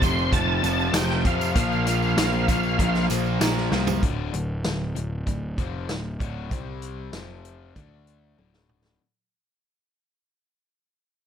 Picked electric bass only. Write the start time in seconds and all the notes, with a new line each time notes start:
0.02 F1
0.33 F1
0.63 F1
0.93 F1
1.25 F2
1.56 A#1
2.18 A#1
2.49 A#1
2.79 A#1
3.10 A#1
3.41 A#1
3.72 C2
4.03 D1
4.33 D1
4.65 D1
4.97 D1
5.27 D1
5.58 F1
5.90 D1
6.20 D1
6.51 C2
7.14 F1
7.76 D2
8.39 D1